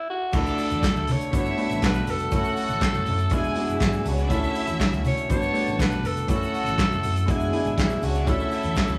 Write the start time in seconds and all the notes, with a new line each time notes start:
0.10 F#4
0.32 D2 D3 A3 D4 E4 F#4 D5, kick, crash, muted conga, low conga, shaker
0.36 A4
0.46 shaker
0.58 open hi-hat, muted conga, shaker
0.70 E2, closed hi-hat, high conga, shaker
0.83 kick, snare, clap, closed hi-hat, muted conga, shaker
0.95 D2, snare, high conga, shaker
1.07 D3, open hi-hat, low conga, shaker
1.12 C#5
1.20 closed hi-hat, shaker
1.31 G1 G3 A3 B3 D4 E4 F#4 A4 B4 E5, kick, closed hi-hat, muted conga, shaker
1.37 C#5
1.46 shaker
1.57 A3 B3 D4 F#4, open hi-hat
1.69 A1, closed hi-hat, shaker
1.82 B1 B4, kick, snare, clap, closed hi-hat, high conga, shaker
1.94 shaker
2.07 F1 A4, open hi-hat, muted conga, high conga, low conga, shaker
2.19 closed hi-hat, shaker
2.31 F#1 F#3 A3 C#4 E4 F#4 A4 F#5, kick, closed hi-hat, muted conga, low conga, shaker
2.35 A4
2.44 shaker
2.56 open hi-hat, shaker
2.68 A1, closed hi-hat, high conga, shaker
2.81 kick, snare, clap, closed hi-hat, muted conga, shaker
2.94 F#1, high conga, shaker
3.06 F#2, open hi-hat, low conga, shaker
3.18 closed hi-hat, shaker
3.29 E1 E3 G#3 B3 D4 F#4 G#4 G#5, kick, closed hi-hat, shaker
3.35 E4
3.44 shaker
3.55 G#3 B3 D4 F#4, open hi-hat, muted conga
3.67 F#1, closed hi-hat, shaker
3.72 E3 E4
3.80 G#1 F#3 F#4, kick, snare, clap, closed hi-hat, high conga, shaker
3.85 G#3 E4 G#4
3.93 A3, shaker
3.97 A4
4.04 C#2 B3 B4, open hi-hat, muted conga, high conga, low conga, shaker
4.08 F#4 C#5
4.13 C#4
4.18 D4 D5, closed hi-hat, shaker
4.28 D2 D3 A3 C#4 E4 F4 F#4 E5, kick, closed hi-hat, low conga, shaker
4.33 F#4 A4
4.44 shaker
4.55 open hi-hat, muted conga, shaker
4.67 E2, closed hi-hat, high conga, shaker
4.80 kick, snare, clap, closed hi-hat, shaker
4.91 D2, high conga, shaker
5.04 D3 C#5, open hi-hat, low conga, shaker
5.17 closed hi-hat, shaker
5.29 G1 G3 A3 B3 D4 F#4 A4 B4 C#5 A5, kick, closed hi-hat, shaker
5.42 shaker
5.53 A3 B3 D4 F#4, open hi-hat
5.66 A1, closed hi-hat, shaker
5.78 B1 B4, kick, snare, closed hi-hat, muted conga, high conga, shaker
5.82 clap
5.91 shaker
6.03 F1 A4, open hi-hat, muted conga, high conga, low conga, shaker
6.17 closed hi-hat, shaker
6.27 F#1 F#3 A3 C#4 E4 F#4 A4 F#5, kick, closed hi-hat, muted conga, low conga, shaker
6.36 A4
6.43 shaker
6.53 open hi-hat, muted conga, shaker
6.64 A1, closed hi-hat, high conga, shaker
6.77 kick, snare, clap, closed hi-hat, muted conga, shaker
6.90 F#1, high conga, shaker
7.02 F#2, open hi-hat, muted conga, low conga, shaker
7.16 closed hi-hat, shaker
7.26 E1 E3 G#3 B3 D4 F#4 G#4 G#5, kick, closed hi-hat, shaker
7.31 E4
7.40 F#1, shaker
7.52 G#3 B3 D4 E4, open hi-hat, high conga
7.65 G#1, closed hi-hat, shaker
7.76 E1 F#3 E4 F#4, kick, snare, clap, closed hi-hat, muted conga, high conga, shaker
7.86 G#3 G#4, shaker
7.94 A3 A4
8.02 C#2 B3 F#4 B4, open hi-hat, muted conga, high conga, low conga, shaker
8.10 C#4 C#5
8.14 D4 D5, closed hi-hat, shaker
8.25 D2 D3 A3 C#4 E4 F4 A4 E5, kick, closed hi-hat, muted conga, low conga, shaker
8.32 F#4
8.40 shaker
8.51 open hi-hat, shaker
8.63 E2, closed hi-hat, high conga, shaker
8.75 kick, snare, clap, closed hi-hat, muted conga, shaker
8.88 D2, high conga, shaker